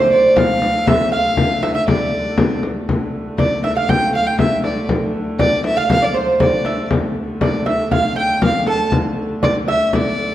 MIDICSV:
0, 0, Header, 1, 5, 480
1, 0, Start_track
1, 0, Key_signature, -1, "minor"
1, 0, Tempo, 503651
1, 826, Time_signature, 2, 2, 24, 8
1, 9860, End_track
2, 0, Start_track
2, 0, Title_t, "Fiddle"
2, 0, Program_c, 0, 110
2, 0, Note_on_c, 0, 72, 80
2, 104, Note_off_c, 0, 72, 0
2, 116, Note_on_c, 0, 74, 85
2, 360, Note_on_c, 0, 77, 93
2, 375, Note_off_c, 0, 74, 0
2, 826, Note_on_c, 0, 76, 96
2, 840, Note_off_c, 0, 77, 0
2, 1066, Note_off_c, 0, 76, 0
2, 1071, Note_on_c, 0, 77, 94
2, 1550, Note_on_c, 0, 76, 86
2, 1565, Note_off_c, 0, 77, 0
2, 1668, Note_off_c, 0, 76, 0
2, 1674, Note_on_c, 0, 76, 81
2, 1782, Note_off_c, 0, 76, 0
2, 1792, Note_on_c, 0, 74, 79
2, 2471, Note_off_c, 0, 74, 0
2, 3228, Note_on_c, 0, 74, 76
2, 3450, Note_off_c, 0, 74, 0
2, 3472, Note_on_c, 0, 76, 81
2, 3581, Note_off_c, 0, 76, 0
2, 3591, Note_on_c, 0, 77, 84
2, 3709, Note_on_c, 0, 79, 98
2, 3723, Note_off_c, 0, 77, 0
2, 3947, Note_off_c, 0, 79, 0
2, 3956, Note_on_c, 0, 77, 84
2, 4066, Note_on_c, 0, 79, 86
2, 4080, Note_off_c, 0, 77, 0
2, 4183, Note_off_c, 0, 79, 0
2, 4189, Note_on_c, 0, 76, 83
2, 4410, Note_off_c, 0, 76, 0
2, 4423, Note_on_c, 0, 74, 62
2, 4647, Note_off_c, 0, 74, 0
2, 5139, Note_on_c, 0, 74, 90
2, 5365, Note_off_c, 0, 74, 0
2, 5388, Note_on_c, 0, 76, 88
2, 5508, Note_on_c, 0, 77, 93
2, 5522, Note_off_c, 0, 76, 0
2, 5627, Note_off_c, 0, 77, 0
2, 5633, Note_on_c, 0, 77, 98
2, 5755, Note_on_c, 0, 74, 86
2, 5769, Note_off_c, 0, 77, 0
2, 5879, Note_on_c, 0, 72, 82
2, 5893, Note_off_c, 0, 74, 0
2, 6109, Note_off_c, 0, 72, 0
2, 6115, Note_on_c, 0, 74, 75
2, 6557, Note_off_c, 0, 74, 0
2, 7072, Note_on_c, 0, 74, 72
2, 7292, Note_off_c, 0, 74, 0
2, 7320, Note_on_c, 0, 76, 80
2, 7536, Note_off_c, 0, 76, 0
2, 7561, Note_on_c, 0, 77, 85
2, 7777, Note_off_c, 0, 77, 0
2, 7794, Note_on_c, 0, 79, 86
2, 8013, Note_off_c, 0, 79, 0
2, 8047, Note_on_c, 0, 77, 85
2, 8260, Note_off_c, 0, 77, 0
2, 8275, Note_on_c, 0, 81, 85
2, 8494, Note_off_c, 0, 81, 0
2, 8994, Note_on_c, 0, 74, 90
2, 9100, Note_off_c, 0, 74, 0
2, 9240, Note_on_c, 0, 76, 95
2, 9405, Note_off_c, 0, 76, 0
2, 9405, Note_on_c, 0, 76, 64
2, 9490, Note_on_c, 0, 74, 88
2, 9504, Note_off_c, 0, 76, 0
2, 9860, Note_off_c, 0, 74, 0
2, 9860, End_track
3, 0, Start_track
3, 0, Title_t, "Lute"
3, 0, Program_c, 1, 24
3, 0, Note_on_c, 1, 72, 68
3, 344, Note_on_c, 1, 77, 76
3, 357, Note_off_c, 1, 72, 0
3, 832, Note_off_c, 1, 77, 0
3, 836, Note_on_c, 1, 76, 83
3, 1061, Note_off_c, 1, 76, 0
3, 1065, Note_on_c, 1, 77, 80
3, 1547, Note_off_c, 1, 77, 0
3, 1551, Note_on_c, 1, 76, 69
3, 1653, Note_off_c, 1, 76, 0
3, 1665, Note_on_c, 1, 76, 74
3, 1788, Note_off_c, 1, 76, 0
3, 1792, Note_on_c, 1, 74, 68
3, 2471, Note_off_c, 1, 74, 0
3, 3230, Note_on_c, 1, 74, 64
3, 3468, Note_on_c, 1, 76, 74
3, 3475, Note_off_c, 1, 74, 0
3, 3585, Note_off_c, 1, 76, 0
3, 3588, Note_on_c, 1, 77, 75
3, 3709, Note_off_c, 1, 77, 0
3, 3713, Note_on_c, 1, 79, 81
3, 3951, Note_off_c, 1, 79, 0
3, 3955, Note_on_c, 1, 77, 70
3, 4066, Note_off_c, 1, 77, 0
3, 4069, Note_on_c, 1, 79, 70
3, 4188, Note_off_c, 1, 79, 0
3, 4192, Note_on_c, 1, 76, 61
3, 4635, Note_off_c, 1, 76, 0
3, 5142, Note_on_c, 1, 74, 73
3, 5494, Note_off_c, 1, 74, 0
3, 5498, Note_on_c, 1, 77, 82
3, 5613, Note_off_c, 1, 77, 0
3, 5625, Note_on_c, 1, 77, 80
3, 5735, Note_off_c, 1, 77, 0
3, 5739, Note_on_c, 1, 74, 68
3, 5853, Note_on_c, 1, 72, 63
3, 5866, Note_off_c, 1, 74, 0
3, 6099, Note_on_c, 1, 74, 69
3, 6107, Note_off_c, 1, 72, 0
3, 6340, Note_off_c, 1, 74, 0
3, 6344, Note_on_c, 1, 76, 59
3, 6568, Note_off_c, 1, 76, 0
3, 7066, Note_on_c, 1, 74, 65
3, 7296, Note_off_c, 1, 74, 0
3, 7299, Note_on_c, 1, 76, 70
3, 7540, Note_off_c, 1, 76, 0
3, 7544, Note_on_c, 1, 77, 80
3, 7774, Note_off_c, 1, 77, 0
3, 7777, Note_on_c, 1, 79, 74
3, 8017, Note_off_c, 1, 79, 0
3, 8021, Note_on_c, 1, 77, 74
3, 8266, Note_on_c, 1, 69, 56
3, 8270, Note_off_c, 1, 77, 0
3, 8489, Note_off_c, 1, 69, 0
3, 8984, Note_on_c, 1, 74, 75
3, 9207, Note_off_c, 1, 74, 0
3, 9228, Note_on_c, 1, 76, 79
3, 9461, Note_off_c, 1, 76, 0
3, 9465, Note_on_c, 1, 74, 74
3, 9860, Note_off_c, 1, 74, 0
3, 9860, End_track
4, 0, Start_track
4, 0, Title_t, "Hurdy-gurdy"
4, 0, Program_c, 2, 110
4, 0, Note_on_c, 2, 50, 71
4, 0, Note_on_c, 2, 57, 74
4, 2739, Note_off_c, 2, 57, 0
4, 2739, Note_on_c, 2, 57, 66
4, 2742, Note_off_c, 2, 50, 0
4, 2742, Note_on_c, 2, 50, 68
4, 6580, Note_off_c, 2, 50, 0
4, 6580, Note_on_c, 2, 50, 69
4, 6582, Note_off_c, 2, 57, 0
4, 6582, Note_on_c, 2, 57, 65
4, 9860, Note_off_c, 2, 50, 0
4, 9860, Note_off_c, 2, 57, 0
4, 9860, End_track
5, 0, Start_track
5, 0, Title_t, "Frame drum"
5, 348, Note_on_c, 9, 64, 89
5, 444, Note_off_c, 9, 64, 0
5, 591, Note_on_c, 9, 64, 70
5, 686, Note_off_c, 9, 64, 0
5, 833, Note_on_c, 9, 64, 95
5, 928, Note_off_c, 9, 64, 0
5, 1307, Note_on_c, 9, 64, 95
5, 1403, Note_off_c, 9, 64, 0
5, 1551, Note_on_c, 9, 64, 75
5, 1647, Note_off_c, 9, 64, 0
5, 1791, Note_on_c, 9, 64, 92
5, 1886, Note_off_c, 9, 64, 0
5, 2264, Note_on_c, 9, 64, 86
5, 2360, Note_off_c, 9, 64, 0
5, 2508, Note_on_c, 9, 64, 68
5, 2603, Note_off_c, 9, 64, 0
5, 2753, Note_on_c, 9, 64, 80
5, 2848, Note_off_c, 9, 64, 0
5, 2986, Note_on_c, 9, 64, 25
5, 3082, Note_off_c, 9, 64, 0
5, 3224, Note_on_c, 9, 64, 82
5, 3319, Note_off_c, 9, 64, 0
5, 3467, Note_on_c, 9, 64, 59
5, 3562, Note_off_c, 9, 64, 0
5, 3708, Note_on_c, 9, 64, 75
5, 3803, Note_off_c, 9, 64, 0
5, 3946, Note_on_c, 9, 64, 23
5, 4041, Note_off_c, 9, 64, 0
5, 4181, Note_on_c, 9, 64, 77
5, 4276, Note_off_c, 9, 64, 0
5, 4421, Note_on_c, 9, 64, 61
5, 4517, Note_off_c, 9, 64, 0
5, 4660, Note_on_c, 9, 64, 82
5, 4755, Note_off_c, 9, 64, 0
5, 4906, Note_on_c, 9, 64, 24
5, 5001, Note_off_c, 9, 64, 0
5, 5140, Note_on_c, 9, 64, 81
5, 5235, Note_off_c, 9, 64, 0
5, 5376, Note_on_c, 9, 64, 66
5, 5472, Note_off_c, 9, 64, 0
5, 5620, Note_on_c, 9, 64, 85
5, 5715, Note_off_c, 9, 64, 0
5, 6101, Note_on_c, 9, 64, 83
5, 6196, Note_off_c, 9, 64, 0
5, 6336, Note_on_c, 9, 64, 69
5, 6431, Note_off_c, 9, 64, 0
5, 6582, Note_on_c, 9, 64, 81
5, 6677, Note_off_c, 9, 64, 0
5, 6824, Note_on_c, 9, 64, 25
5, 6919, Note_off_c, 9, 64, 0
5, 7063, Note_on_c, 9, 64, 82
5, 7158, Note_off_c, 9, 64, 0
5, 7304, Note_on_c, 9, 64, 66
5, 7400, Note_off_c, 9, 64, 0
5, 7542, Note_on_c, 9, 64, 76
5, 7638, Note_off_c, 9, 64, 0
5, 7782, Note_on_c, 9, 64, 23
5, 7878, Note_off_c, 9, 64, 0
5, 8024, Note_on_c, 9, 64, 82
5, 8119, Note_off_c, 9, 64, 0
5, 8258, Note_on_c, 9, 64, 63
5, 8354, Note_off_c, 9, 64, 0
5, 8501, Note_on_c, 9, 64, 81
5, 8597, Note_off_c, 9, 64, 0
5, 8742, Note_on_c, 9, 64, 25
5, 8838, Note_off_c, 9, 64, 0
5, 8985, Note_on_c, 9, 64, 79
5, 9080, Note_off_c, 9, 64, 0
5, 9223, Note_on_c, 9, 64, 61
5, 9318, Note_off_c, 9, 64, 0
5, 9465, Note_on_c, 9, 64, 75
5, 9560, Note_off_c, 9, 64, 0
5, 9860, End_track
0, 0, End_of_file